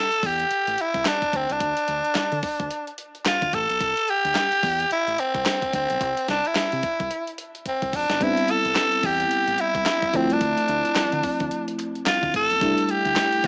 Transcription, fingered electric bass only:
0, 0, Header, 1, 3, 480
1, 0, Start_track
1, 0, Tempo, 550459
1, 1399, Time_signature, 4, 2, 24, 8
1, 11749, End_track
2, 0, Start_track
2, 0, Title_t, "Fingered electric bass"
2, 0, Program_c, 0, 33
2, 201, Note_on_c, 0, 40, 91
2, 380, Note_off_c, 0, 40, 0
2, 588, Note_on_c, 0, 33, 87
2, 658, Note_off_c, 0, 33, 0
2, 821, Note_on_c, 0, 36, 90
2, 894, Note_off_c, 0, 36, 0
2, 1162, Note_on_c, 0, 38, 90
2, 1269, Note_off_c, 0, 38, 0
2, 1306, Note_on_c, 0, 36, 90
2, 1377, Note_off_c, 0, 36, 0
2, 1398, Note_on_c, 0, 38, 103
2, 1507, Note_off_c, 0, 38, 0
2, 1642, Note_on_c, 0, 38, 92
2, 1749, Note_off_c, 0, 38, 0
2, 2025, Note_on_c, 0, 50, 101
2, 2096, Note_off_c, 0, 50, 0
2, 2265, Note_on_c, 0, 38, 89
2, 2336, Note_off_c, 0, 38, 0
2, 2984, Note_on_c, 0, 38, 82
2, 3055, Note_off_c, 0, 38, 0
2, 3082, Note_on_c, 0, 33, 98
2, 3189, Note_off_c, 0, 33, 0
2, 3226, Note_on_c, 0, 35, 80
2, 3296, Note_off_c, 0, 35, 0
2, 3319, Note_on_c, 0, 36, 92
2, 3427, Note_off_c, 0, 36, 0
2, 3704, Note_on_c, 0, 38, 84
2, 3775, Note_off_c, 0, 38, 0
2, 4041, Note_on_c, 0, 40, 100
2, 4220, Note_off_c, 0, 40, 0
2, 4425, Note_on_c, 0, 33, 81
2, 4496, Note_off_c, 0, 33, 0
2, 4664, Note_on_c, 0, 36, 96
2, 4735, Note_off_c, 0, 36, 0
2, 5001, Note_on_c, 0, 38, 89
2, 5108, Note_off_c, 0, 38, 0
2, 5145, Note_on_c, 0, 35, 89
2, 5216, Note_off_c, 0, 35, 0
2, 5241, Note_on_c, 0, 36, 103
2, 5348, Note_off_c, 0, 36, 0
2, 5483, Note_on_c, 0, 36, 89
2, 5589, Note_off_c, 0, 36, 0
2, 5867, Note_on_c, 0, 48, 100
2, 5937, Note_off_c, 0, 48, 0
2, 6105, Note_on_c, 0, 36, 84
2, 6176, Note_off_c, 0, 36, 0
2, 6821, Note_on_c, 0, 36, 83
2, 6894, Note_off_c, 0, 36, 0
2, 6917, Note_on_c, 0, 29, 95
2, 7026, Note_off_c, 0, 29, 0
2, 7065, Note_on_c, 0, 31, 84
2, 7136, Note_off_c, 0, 31, 0
2, 7158, Note_on_c, 0, 33, 94
2, 7267, Note_off_c, 0, 33, 0
2, 7546, Note_on_c, 0, 36, 86
2, 7616, Note_off_c, 0, 36, 0
2, 7879, Note_on_c, 0, 40, 95
2, 8059, Note_off_c, 0, 40, 0
2, 8265, Note_on_c, 0, 33, 88
2, 8336, Note_off_c, 0, 33, 0
2, 8501, Note_on_c, 0, 36, 88
2, 8574, Note_off_c, 0, 36, 0
2, 8840, Note_on_c, 0, 38, 90
2, 8948, Note_off_c, 0, 38, 0
2, 8984, Note_on_c, 0, 36, 88
2, 9055, Note_off_c, 0, 36, 0
2, 9078, Note_on_c, 0, 38, 106
2, 9186, Note_off_c, 0, 38, 0
2, 9321, Note_on_c, 0, 38, 89
2, 9428, Note_off_c, 0, 38, 0
2, 9703, Note_on_c, 0, 50, 103
2, 9775, Note_off_c, 0, 50, 0
2, 9946, Note_on_c, 0, 38, 83
2, 10017, Note_off_c, 0, 38, 0
2, 10666, Note_on_c, 0, 38, 88
2, 10737, Note_off_c, 0, 38, 0
2, 10762, Note_on_c, 0, 33, 96
2, 10869, Note_off_c, 0, 33, 0
2, 10905, Note_on_c, 0, 35, 81
2, 10976, Note_off_c, 0, 35, 0
2, 11000, Note_on_c, 0, 36, 98
2, 11108, Note_off_c, 0, 36, 0
2, 11384, Note_on_c, 0, 38, 89
2, 11455, Note_off_c, 0, 38, 0
2, 11723, Note_on_c, 0, 40, 98
2, 11749, Note_off_c, 0, 40, 0
2, 11749, End_track
3, 0, Start_track
3, 0, Title_t, "Muted fingered electric bass strokes"
3, 1881, Note_on_c, 9, 29, 42
3, 1969, Note_off_c, 9, 29, 0
3, 4281, Note_on_c, 9, 29, 47
3, 4368, Note_off_c, 9, 29, 0
3, 5723, Note_on_c, 9, 29, 44
3, 5810, Note_off_c, 9, 29, 0
3, 8121, Note_on_c, 9, 29, 47
3, 8208, Note_off_c, 9, 29, 0
3, 9563, Note_on_c, 9, 29, 44
3, 9650, Note_off_c, 9, 29, 0
3, 11749, End_track
0, 0, End_of_file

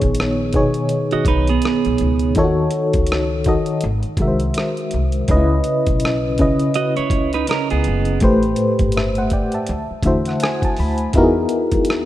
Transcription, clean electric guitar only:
0, 0, Header, 1, 2, 480
1, 0, Start_track
1, 0, Tempo, 731707
1, 1547, Time_signature, 4, 2, 24, 8
1, 7907, End_track
2, 0, Start_track
2, 0, Title_t, "Clean electric guitar"
2, 0, Program_c, 0, 27
2, 738, Note_on_c, 0, 66, 52
2, 740, Note_on_c, 0, 75, 58
2, 827, Note_off_c, 0, 75, 0
2, 828, Note_off_c, 0, 66, 0
2, 839, Note_on_c, 0, 71, 78
2, 842, Note_on_c, 0, 63, 72
2, 968, Note_off_c, 0, 71, 0
2, 970, Note_off_c, 0, 63, 0
2, 980, Note_on_c, 0, 68, 67
2, 985, Note_on_c, 0, 59, 57
2, 1526, Note_off_c, 0, 68, 0
2, 1529, Note_off_c, 0, 59, 0
2, 4431, Note_on_c, 0, 75, 68
2, 4435, Note_on_c, 0, 66, 52
2, 4564, Note_off_c, 0, 75, 0
2, 4566, Note_off_c, 0, 66, 0
2, 4570, Note_on_c, 0, 64, 53
2, 4570, Note_on_c, 0, 73, 61
2, 4797, Note_off_c, 0, 73, 0
2, 4798, Note_off_c, 0, 64, 0
2, 4816, Note_on_c, 0, 71, 68
2, 4823, Note_on_c, 0, 63, 62
2, 4906, Note_off_c, 0, 71, 0
2, 4909, Note_off_c, 0, 63, 0
2, 4912, Note_on_c, 0, 61, 63
2, 4916, Note_on_c, 0, 70, 66
2, 5045, Note_off_c, 0, 61, 0
2, 5045, Note_off_c, 0, 70, 0
2, 5056, Note_on_c, 0, 59, 57
2, 5057, Note_on_c, 0, 68, 59
2, 5373, Note_off_c, 0, 68, 0
2, 5374, Note_off_c, 0, 59, 0
2, 7907, End_track
0, 0, End_of_file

